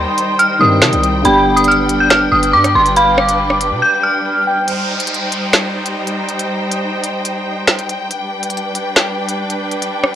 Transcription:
Already playing: D#3 G3 C4 D#4 G4 C5 G5 C6
0.18 closed hi-hat
0.39 F6, closed hi-hat
0.59 G2 D#3 G3 C4 D#4 D#6
0.82 C3, finger snap, snare
0.93 C2, closed hi-hat
1.04 closed hi-hat
1.22 G1 D3 G3 B3 D4 B4 G5 B5, closed hi-hat
1.27 G4
1.57 D#6, closed hi-hat
1.64 F6, closed hi-hat
1.71 closed hi-hat
1.89 closed hi-hat
2.00 G6
2.10 F6, finger snap, cross-stick, snare
2.32 G1 D#6
2.43 closed hi-hat
2.53 G2 D6
2.64 cross-stick, closed hi-hat
2.75 G1 C6
2.86 closed hi-hat
2.96 F5 B5, closed hi-hat
3.18 D6, cross-stick
3.29 closed hi-hat
3.50 cross-stick
3.61 closed hi-hat
3.71 B2
3.82 G6
4.03 F6
4.47 G5
4.68 G3 D#4 C5 G5, closed hi-hat, downlifter
5.00 closed hi-hat
5.07 closed hi-hat
5.14 closed hi-hat
5.32 closed hi-hat
5.53 finger snap, snare
5.86 closed hi-hat
6.07 closed hi-hat
6.29 closed hi-hat
6.39 closed hi-hat
6.71 closed hi-hat
7.04 closed hi-hat
7.25 closed hi-hat
7.67 finger snap, snare
7.79 closed hi-hat
7.89 closed hi-hat
8.11 G3 D4 B4, closed hi-hat
8.43 closed hi-hat
8.50 closed hi-hat
8.57 closed hi-hat
8.75 closed hi-hat
8.96 finger snap, snare
9.29 closed hi-hat
9.50 closed hi-hat
9.71 closed hi-hat
9.82 closed hi-hat
10.04 cross-stick

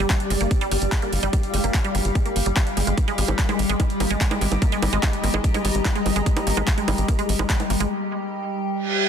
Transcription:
Already playing: G3 G4 D5 F5
0.10 G3, kick, clap, closed hi-hat
0.20 closed hi-hat
0.30 G1 G#3, open hi-hat
0.41 G1 A#3, closed hi-hat
0.51 kick, closed hi-hat
0.61 G3, closed hi-hat
0.71 G1 G3, open hi-hat
0.82 G1, closed hi-hat
0.92 G#3, kick, clap, closed hi-hat
1.02 A#3, closed hi-hat
1.13 G1, open hi-hat
1.23 G1 G3, closed hi-hat
1.33 G3, kick, closed hi-hat
1.43 closed hi-hat
1.54 G1 G#3, open hi-hat
1.64 G1 A#3, closed hi-hat
1.74 kick, clap, closed hi-hat
1.84 G3, closed hi-hat
1.95 G1 G3, open hi-hat
2.05 G1, closed hi-hat
2.15 G#3, kick, closed hi-hat
2.26 A#3, closed hi-hat
2.36 G1, open hi-hat
2.46 G1 G3, closed hi-hat
2.56 G3, kick, clap, closed hi-hat
2.67 closed hi-hat
2.77 G1 G#3, open hi-hat
2.87 G1 G#3, closed hi-hat
2.98 kick, closed hi-hat, high bongo
3.08 G#3, closed hi-hat
3.18 G#1 G#3, open hi-hat
3.28 G#1, closed hi-hat, high bongo
3.39 A#3, kick, clap, closed hi-hat
3.49 G#3 D#5, closed hi-hat, high bongo
3.59 G#1, open hi-hat
3.69 G#1 G#3, closed hi-hat
3.80 G#3, kick, closed hi-hat, high bongo
3.90 closed hi-hat
4.00 G#1 A#3, open hi-hat, high bongo
4.11 G#1 G#3, closed hi-hat
4.21 kick, clap, closed hi-hat
4.31 G#3 A#5, closed hi-hat, high bongo
4.41 G#1 G#3, open hi-hat
4.52 G#1, closed hi-hat, high bongo
4.62 A#3, kick, closed hi-hat
4.72 G#3, closed hi-hat
4.82 G#1, open hi-hat, high bongo
4.93 G#1 G#3, closed hi-hat
5.03 G#3, kick, clap, closed hi-hat, high bongo
5.13 closed hi-hat
5.24 G#1 A#3, open hi-hat
5.34 G#1 G#3, closed hi-hat, high bongo
5.44 kick, closed hi-hat
5.54 G#3, closed hi-hat, high bongo
5.65 G#1 G#3, open hi-hat
5.75 G#1, closed hi-hat
5.85 A#3, kick, clap, closed hi-hat, high bongo
5.95 G#3, closed hi-hat
6.06 G#1, open hi-hat, high bongo
6.16 G#1 G#3, closed hi-hat
6.26 G#3, kick, closed hi-hat
6.37 closed hi-hat, high bongo
6.47 G#1 A#3, open hi-hat
6.57 G#1 G#3, closed hi-hat, high bongo
6.67 kick, clap, closed hi-hat
6.78 G#3, closed hi-hat
6.88 G#1 G#3, open hi-hat, high bongo
6.98 G#1, closed hi-hat
7.08 A#3, kick, closed hi-hat, high bongo
7.19 G#3, closed hi-hat
7.29 G#1, open hi-hat
7.39 G#1 G#3, closed hi-hat, high bongo
7.50 G#3, kick, clap, closed hi-hat
7.60 closed hi-hat, high bongo
7.70 G#1 A#3, open hi-hat
7.80 G#1 G#3, closed hi-hat
8.73 reverse cymbal

